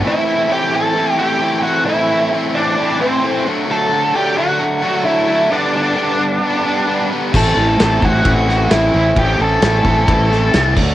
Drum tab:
CC |--------|--------|--------|--------|
RD |--------|--------|--------|--------|
SD |--------|--------|--------|--------|
BD |--------|--------|--------|--------|

CC |x-------|-------x|
RD |--b-b-b-|b-b-b-b-|
SD |--o--oo-|--o--oo-|
BD |o--oo---|o--oo--o|